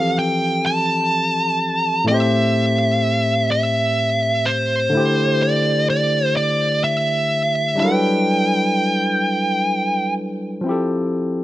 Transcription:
Already playing: E3 F3 C4 G4 A4 F5
0.19 G5
0.66 A5
2.04 A2 A3 E5
2.09 C4 G4
2.14 C5
3.52 E5
4.46 C5
4.89 D3 A3
4.95 E4 G4
5.00 C5
5.42 D5
5.90 D5
6.37 D5
6.84 E5
7.75 G3 D4
7.80 F#3 E4 G5
7.84 A4 A#4
7.92 B4
10.61 F3 C4
10.66 E4 G4
10.71 A4

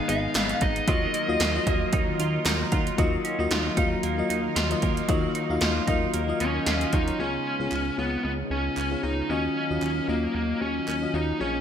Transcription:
Already playing: G#2 D#3 G#3 B3 D#4 G#4 D#5
0.08 G#1 B3 D#4 G#4 D#5 F5, closed hi-hat
0.35 G#1 B3, snare, clap, closed hi-hat, tambourine
0.49 closed hi-hat
0.61 G#1 D#4 D#5, kick, closed hi-hat
0.76 closed hi-hat
0.87 D#2 D#3 F#3 A#3 F4 A#4 D#5, kick, closed hi-hat
1.14 A#3, closed hi-hat
1.28 D#2 A#3 F4 F#4 D#5
1.40 D#2 F4, snare, clap, closed hi-hat, tambourine
1.54 F#3 A#3 F4 D#5
1.67 D#2 A#3, kick, closed hi-hat
1.93 D#2 D#4, kick, closed hi-hat
2.19 D#2 F4, closed hi-hat
2.46 D#2 D#4 A#5, snare, clap, closed hi-hat, tambourine
2.72 D#2 F4 F#5, kick, closed hi-hat
2.87 closed hi-hat
2.98 D#2 D#3 F#3 A#3 D#4 F4 F#4 A#4 D#5 F5, kick, closed hi-hat
3.24 C#4, closed hi-hat
3.39 D#2 A#3 D#4 F4 F#4 D#5
3.51 D#2 F4, snare, closed hi-hat
3.77 D#2 F#3 A#3 D#4 F4 F5, kick, closed hi-hat
4.03 D#2 A#3, closed hi-hat
4.18 F#3 A#3 F4 D#5
4.30 D#2 D#4, closed hi-hat
4.56 D#2 F4, snare, closed hi-hat
4.71 F#3 A#3 F4 D#5, closed hi-hat
4.82 D#2 A#3, kick, closed hi-hat
4.97 closed hi-hat
5.08 D#2 D#3 F#3 A#3 F4 D#5, kick, closed hi-hat
5.35 D#4, closed hi-hat
5.50 D#2 A#3 F4 F#4 F5
5.61 D#2 F4, snare, closed hi-hat
5.87 D#2 F#3 A#3 D#4 F4 D#5, kick, closed hi-hat
6.14 D#2 A#3, closed hi-hat
6.28 F#3 A#3 F4 D#5
6.40 D#2 C#4 D#4, closed hi-hat
6.66 D#2 F4 F#5 D#6, snare, closed hi-hat
6.81 closed hi-hat
6.93 D#2 A#3 D#4 F5 C#6, kick, closed hi-hat
7.07 C#5 A#5, closed hi-hat
7.19 C#2 C#3 G#3 B3 C#4 D#4 F4 G#4 C#5
7.59 C#2 B3 F4 G#4 C#5
7.72 C#2, clap
7.98 C#2 B3 F4 G#4 C#5
8.24 C#2 B3
8.51 C#2 C#4
8.77 C#2, clap
8.91 B3 F4 G#4 C#5
9.03 C#2 B3 D#4 F4 G#4 C#5
9.29 D#2 D#3 F#3 A#3 C#4 F4 F#4 D#5 F5
9.70 D#2 C#4 F4 F#4 D#5
9.82 D#2, clap
10.08 D#2 A#3 C#4 F4 F#4 D#5
10.35 D#2 A#3
10.61 D#2 C#4
10.88 D#2, clap
11.02 C#4 F4 F#4 D#5
11.13 D#2 C#4 D#4 F4 F#4 D#5
11.40 A#1 A#2 G#3 A#3 C#4 F4 G#4 C#5

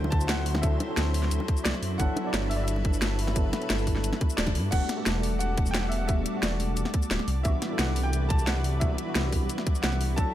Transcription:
Already playing: D2 F#3 C4 D4 E4 A4 C5 G5
0.04 high bongo
0.10 D2 A5, kick, closed hi-hat
0.21 shaker
0.27 F#5, snare, closed hi-hat, shaker
0.46 open hi-hat
0.55 snare, high bongo
0.62 F#3 C4 D4 E4 A4 E5, kick, closed hi-hat, shaker
0.80 closed hi-hat, high bongo
0.87 F#3 C4 D4 E4 A4
0.97 D2, snare, closed hi-hat, shaker
1.14 open hi-hat
1.23 snare
1.31 D2, closed hi-hat, shaker
1.40 high bongo
1.48 kick, closed hi-hat
1.57 shaker
1.64 C2 D5, snare, closed hi-hat, shaker
1.74 snare
1.83 F#2, open hi-hat
1.98 G1 F#3 B3 D4 E4 A4 B4 F#5, kick, closed hi-hat, shaker
2.16 closed hi-hat, high bongo
2.23 F#3 B3 D4 E4 D5
2.34 G1, snare, closed hi-hat, shaker
2.49 E5, open hi-hat
2.56 D5
2.63 E5
2.68 closed hi-hat, shaker
2.76 high bongo
2.85 G1, kick, closed hi-hat
2.93 shaker
3.02 snare, closed hi-hat, shaker
3.19 open hi-hat
3.28 snare, high bongo
3.34 F#3 B3 D4 E4 A4, kick, closed hi-hat, shaker
3.53 snare, closed hi-hat, high bongo
3.60 F#3 B3 D4 E4 A4, closed hi-hat
3.70 G1, snare, closed hi-hat, shaker
3.79 shaker
3.87 kick, open hi-hat, shaker
3.96 snare
4.04 G1, closed hi-hat, shaker
4.13 snare, high bongo
4.21 kick, closed hi-hat, high bongo
4.30 shaker
4.37 D1 D5, snare, closed hi-hat, shaker
4.47 kick, snare, closed hi-hat, high bongo
4.55 G2, open hi-hat
4.71 E1 G3 A3 B3 D4 F#4 A4 D5 F#5, kick, closed hi-hat, crash, shaker
4.89 snare, closed hi-hat
4.96 G3 A3 B3 D4 A4
5.06 E1, snare, closed hi-hat, shaker
5.23 open hi-hat
5.39 F#5, closed hi-hat, shaker
5.58 E1, kick, closed hi-hat
5.66 shaker
5.71 G5, snare, closed hi-hat, shaker
5.80 F#5
5.89 E5, open hi-hat
5.98 F#5
6.07 G3 A3 B3 D4 F#4 E5, kick, closed hi-hat, shaker
6.26 closed hi-hat
6.33 G3 A3 B3 D4 F#4
6.42 E1 D5, snare, closed hi-hat, shaker
6.60 open hi-hat
6.77 E1, closed hi-hat, shaker
6.85 snare
6.94 kick, closed hi-hat
7.02 shaker
7.11 D1, snare, closed hi-hat, shaker
7.19 snare
7.28 C2 F#3 E4 B4, open hi-hat
7.43 C2 E3 G3 B3 D4 F#4 E5, kick, closed hi-hat, shaker
7.62 snare, closed hi-hat
7.69 E3 G3 B3 D4 A4
7.78 C2 F#5, snare, closed hi-hat, shaker
7.96 open hi-hat
8.03 G5
8.13 closed hi-hat, shaker
8.29 C2 A5, kick, closed hi-hat
8.39 shaker
8.46 F#5, snare, closed hi-hat, shaker
8.64 open hi-hat
8.80 E3 G3 B3 D4 F#4 E5, kick, closed hi-hat, shaker
8.98 closed hi-hat
9.05 E3 G3 B3 D4 F#4
9.15 C2, snare, closed hi-hat, shaker
9.32 kick, open hi-hat
9.49 closed hi-hat, shaker
9.58 snare
9.67 kick, closed hi-hat
9.75 shaker
9.82 C2 F#5, snare, closed hi-hat, shaker
9.92 snare
10.01 open hi-hat
10.16 D2 F#3 C4 D4 E4 A4 C5 A5, kick, closed hi-hat, shaker

